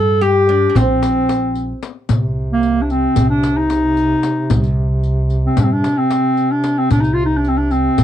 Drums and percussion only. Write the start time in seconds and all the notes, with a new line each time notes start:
0.23 riq
0.75 riq, darbuka dum
1.03 riq, darbuka tek
1.29 riq, darbuka tek
1.55 riq, darbuka ka
1.83 riq, darbuka tek
2.09 riq, darbuka dum
2.63 riq
2.90 riq, darbuka ka
3.16 riq, darbuka dum
3.43 riq, darbuka tek
3.70 riq, darbuka tek
3.97 riq
4.23 riq, darbuka tek
4.50 riq, darbuka dum
4.64 riq
5.03 riq
5.30 riq, darbuka ka
5.57 riq, darbuka dum
5.84 riq, darbuka tek
6.11 riq, darbuka tek
6.37 riq, darbuka ka
6.64 riq, darbuka tek
6.90 riq, darbuka dum
7.04 riq
7.45 riq
7.71 riq, darbuka ka
7.98 riq, darbuka dum